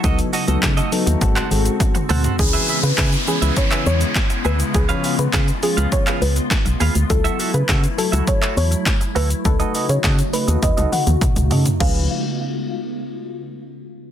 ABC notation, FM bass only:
X:1
M:4/4
L:1/16
Q:1/4=102
K:C#m
V:1 name="FM bass" clef=bass
C,,2 z C,, C,2 z D,, G,,,2 G,,,2 z2 =D,,2 | C,,2 z C, C,2 z C,, z2 E,,2 z2 =D,,2 | C,,2 z C, C,2 z C,, z2 C,,2 z B,,, D,, =D,, | C,,2 z C, C,2 z C,, z2 E,,2 z2 =D,,2 |
C,,2 z C, C,2 z D,, D,, C,, z D,, C,, C,, C,2 | C,,2 z12 z2 |]